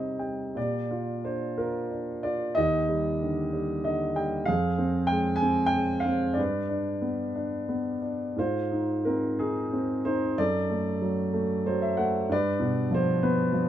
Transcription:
Already playing: C3 G3 C4 D#4 C5 D#5
0.19 G3 G5
0.55 A#2 G4 D5
0.91 F4
1.24 D4 C5
1.58 F4 A#4
1.91 D4
2.23 F4 D5
2.55 D#2 G4 D#5
2.89 G3
3.22 D3
3.53 G3
3.84 D3 D#5
4.16 G3 G5
4.45 F2 G#4 F5
4.78 C4
5.07 G#3 G5
5.36 G#5
5.42 C4
5.66 G5
5.73 G#3
6.00 F5
6.05 C4
6.34 G2 D5
6.38 B4
6.69 D4
7.02 B3
7.35 D4
7.68 B3
8.02 D4
8.36 G#2 F4 C5
8.72 D#4
9.05 C4 A#4
9.39 D#4 G#4
9.73 C4
10.05 D#4 C5
10.38 F#2 A4 D5
10.69 A3
11.01 F#3
11.33 A3
11.66 F#3 C5
11.82 E5
11.97 A3 F#5
12.29 G2 B4 D5
12.60 B2
12.91 F3 C5
13.23 B3 B4
13.53 F3

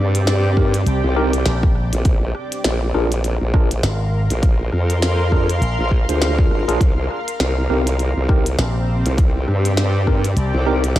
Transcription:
Already playing: G2 C4 G4 D5
0.15 closed hi-hat
0.27 snare, closed hi-hat
0.57 C4 D#4 G4 A#4, kick, cross-stick
0.74 closed hi-hat
0.86 C2, closed hi-hat
1.04 C2
1.16 C4 D#4 G4 A#4
1.33 closed hi-hat
1.46 A#1, snare, closed hi-hat
1.63 kick
1.75 cross-stick
1.93 A#1, closed hi-hat
2.05 A#1 A#4, kick, closed hi-hat
2.35 cross-stick
2.52 F5, closed hi-hat
2.62 A#1 C6, snare, closed hi-hat
2.94 A#1 D4 F4 G#4 A#4, cross-stick
3.12 closed hi-hat
3.24 closed hi-hat
3.41 A#1
3.54 D4 F4 G#4 A#4, kick, cross-stick
3.71 closed hi-hat
3.83 G#1, snare, closed hi-hat
4.30 A#1, closed hi-hat
4.43 kick, closed hi-hat
4.72 F2, cross-stick
4.90 closed hi-hat
5.02 snare, closed hi-hat
5.32 D4 F4 G#4 A#4, kick, cross-stick
5.50 closed hi-hat
5.61 A#1, closed hi-hat
5.79 A#1
5.91 kick
6.09 D2 D4 F4 G#4 C5, closed hi-hat
6.22 snare, closed hi-hat
6.38 D4 F4 G#4 A#4, kick
6.51 G#1, cross-stick
6.68 A#1 D4 F4 G#4 A#4, closed hi-hat
6.80 C2 C4, kick, closed hi-hat
7.11 cross-stick
7.28 closed hi-hat
7.40 C2 G4, snare, closed hi-hat
7.69 C2 C4 D#4 G4 A#4, cross-stick
7.87 closed hi-hat
7.99 closed hi-hat
8.04 D5
8.17 C2
8.29 C4 D#4 G4 A#4, kick, cross-stick
8.46 closed hi-hat
8.59 A#1, snare, closed hi-hat
9.06 C2, closed hi-hat
9.18 kick, closed hi-hat
9.48 G2, cross-stick
9.65 closed hi-hat
9.77 snare, closed hi-hat
10.07 C4 D#4 G4 A#4, kick, cross-stick
10.24 closed hi-hat
10.36 C2, closed hi-hat
10.54 C2
10.66 C4 D#4 G4 A#4
10.84 closed hi-hat
10.96 A#1, snare, closed hi-hat

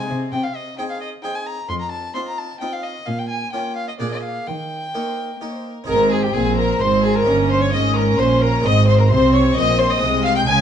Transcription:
Already playing: C4 D#4 G#4
0.10 C3 C4 G#4
0.32 C3 G5
0.44 F5
0.56 D#5
0.78 C4 D#4 G#4 G5
0.90 F5
1.01 D#5
1.23 C4 D#4 G#4 G5
1.35 G#5
1.46 A#5
1.69 F2 C6
1.80 A#5
1.92 A5
2.15 C4 D#4 F4 C6
2.27 A#5
2.38 A5
2.60 C4 D#4 F4 G5
2.73 F5
2.84 D#5
3.06 A#2 F5
3.19 G5
3.29 G#5
3.52 A#3 C#4 F4 G5
3.76 F5
3.89 D#5
3.99 A#2 A#3 D4 G#4 D5
4.12 D#5
4.23 F5
4.47 D#3 G5
4.94 A#3 D#4 A#4 C#5
5.06 C5
5.17 A#4
5.41 A#3 D#4 A#4 C#5
5.54 C5
5.65 A#4
5.84 C4 D#4 G#4 A#4 A#5
5.88 G#1 G#2 C4 A#4
6.11 G#4 G#5
6.23 G4 G5
6.34 A#1 A#2 C4 G#4 G#5
6.56 A#4 A#5
6.79 G#1 G#2 C4 C5 C6
7.03 G#4 G#5
7.15 A#4 A#5
7.23 A#3 C#4 D#4
7.27 G1 G2 C#4
7.50 C5 C6
7.61 C#5 C#6
7.73 G#1 G#2 C#4 D#5 D#6
7.96 A#4 A#5
8.18 A#1 A#2 C5 C6
8.41 A#4 A#5
8.60 G#3 C4 D#4 D#6
8.65 G#1 G#2 C4 D#5
8.87 C5 C6
8.99 A#4 A#5
9.10 C2 C3 C4 C5 C6
9.33 C#5 C#6
9.55 A#1 A#2 C4 D#5 D#6
9.79 C5 C6
9.90 D#5 D#6
9.98 G#3 C4 D#4
10.02 C2 C3 G#3
10.24 F5 F6
10.36 G5 G6
10.46 C#2 C#3 G#3 G#5 G#6

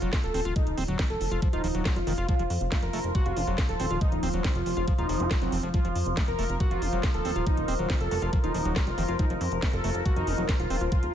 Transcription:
Already playing: F3 F4 C5 F5
0.02 F1 F#3, closed hi-hat
0.13 kick, snare, closed hi-hat
0.24 D#1 A4, closed hi-hat
0.34 D#1 C4, open hi-hat
0.45 D#1 F4, closed hi-hat
0.56 D#4, kick, closed hi-hat
0.67 D#1, closed hi-hat
0.78 D#1 C4, open hi-hat
0.88 D#1 F#3, closed hi-hat
0.99 D#3, kick, snare, closed hi-hat
1.10 F1 A4, closed hi-hat
1.21 F1, open hi-hat
1.31 F1 F4, closed hi-hat
1.42 F3, kick, closed hi-hat
1.53 D#1 D#4 F4, closed hi-hat
1.64 D#1 F3, open hi-hat
1.75 D#1 F#3, closed hi-hat
1.85 kick, snare, closed hi-hat
1.96 F1 A3 F4, closed hi-hat
2.07 F1 D#3, open hi-hat
2.18 F1 F4, closed hi-hat
2.29 F3 F4, kick, closed hi-hat
2.39 F1 F3, closed hi-hat
2.50 F2, open hi-hat
2.61 F1, closed hi-hat
2.72 A3, kick, snare, closed hi-hat
2.83 F1 A#4, closed hi-hat
2.93 F1 A3, open hi-hat
3.04 F1, closed hi-hat
3.15 F#4, kick, closed hi-hat
3.26 F1 F4, closed hi-hat
3.37 F1 C4, open hi-hat
3.47 F1 F#3, closed hi-hat
3.58 kick, snare, closed hi-hat
3.69 D#1 A4, closed hi-hat
3.80 D#1 C4, open hi-hat
3.90 D#1 F4, closed hi-hat
4.01 D#4, kick, closed hi-hat
4.12 D#1, closed hi-hat
4.23 D#1 C4, open hi-hat
4.34 D#1 F#3, closed hi-hat
4.44 D#3, kick, snare, closed hi-hat
4.55 F1 F4, closed hi-hat
4.66 F1, open hi-hat
4.77 F1 F4, closed hi-hat
4.88 F3, kick, closed hi-hat
4.98 D#1 D#4 F4, closed hi-hat
5.09 F1 F3, open hi-hat
5.20 F1 F#4, closed hi-hat
5.31 kick, snare, closed hi-hat
5.42 F1 F#3 C4, closed hi-hat
5.52 F1 F3, open hi-hat
5.63 F1 F3, closed hi-hat
5.74 F3 F4 A#4, kick, closed hi-hat
5.85 F1 F3, closed hi-hat
5.95 F2, open hi-hat
6.06 F1, closed hi-hat
6.17 A3, kick, snare, closed hi-hat
6.21 A#5
6.28 F1 A#4, closed hi-hat
6.39 F1 A3, open hi-hat
6.49 F1, closed hi-hat
6.60 F#4, kick, closed hi-hat
6.71 F1 F4, closed hi-hat
6.82 F1 C4, open hi-hat
6.93 F1 F#3, closed hi-hat
7.03 kick, snare, closed hi-hat
7.14 D#1 A4, closed hi-hat
7.25 D#1 C4, open hi-hat
7.36 D#1 F4, closed hi-hat
7.47 D#4, kick, closed hi-hat
7.57 D#1, closed hi-hat
7.68 D#1 C4, open hi-hat
7.79 D#1 F#3, closed hi-hat
7.90 D#3, kick, snare, closed hi-hat
8.01 F1 A4, closed hi-hat
8.11 F1 F#3, open hi-hat
8.22 F1 F4, closed hi-hat
8.33 F3, kick, closed hi-hat
8.44 D#1 D#4 F4, closed hi-hat
8.54 D#1 F3, open hi-hat
8.65 D#1 F#3, closed hi-hat
8.76 kick, snare, closed hi-hat
8.87 F1 A3 F4, closed hi-hat
8.98 F1 D#3, open hi-hat
9.08 F1 F4, closed hi-hat
9.19 F3 D#4, kick, closed hi-hat
9.30 F1 F3, closed hi-hat
9.41 F2, open hi-hat
9.52 F1, closed hi-hat
9.62 A3, kick, snare, closed hi-hat
9.73 F1 A4, closed hi-hat
9.84 F1 A3, open hi-hat
9.95 F1, closed hi-hat
10.06 F#4, kick, closed hi-hat
10.16 F1 D#4, closed hi-hat
10.27 F1 C4, open hi-hat
10.38 F1 F#3, closed hi-hat
10.49 kick, snare, closed hi-hat
10.60 D#1 F4, closed hi-hat
10.70 D#1 C4, open hi-hat
10.81 D#1 F4, closed hi-hat
10.92 F4, kick, closed hi-hat
11.03 D#1, closed hi-hat

